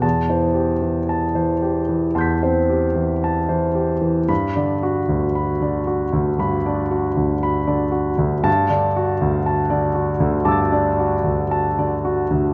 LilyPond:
<<
  \new Staff \with { instrumentName = "Grand piano" } { \time 4/4 \key a \dorian \tempo 4 = 57 << { a''8 r4. <c''' g''' b'''>2 | b''8 r2. r8 | a''8 r4. <d''' e''' a'''>2 | } \\ { r16 c''16 g'16 e16 a''16 c''16 g'16 e16 a''16 c''16 g'16 e16 a''16 c''16 g'8 | r16 d''16 fis'16 d,16 b''16 d''16 fis'16 d,16 b''16 d''16 fis'16 d,16 b''16 d''16 fis'16 d,16 | r16 d''16 fis'16 d,16 a''16 d''16 fis'16 d,16 a''16 d''16 fis'16 d,16 a''16 d''16 fis'16 d,16 | } >> }
  \new Staff \with { instrumentName = "Grand piano" } { \clef bass \time 4/4 \key a \dorian e,16 e8 r8 e8 r16 e,16 c'8 r8 e8 e16 | g,16 d8 r8 d8 d16 g,16 d'8 r8 d8 d16 | g,16 d8 r8 d8 d16 g,16 d'8 r8 d8 d16 | }
>>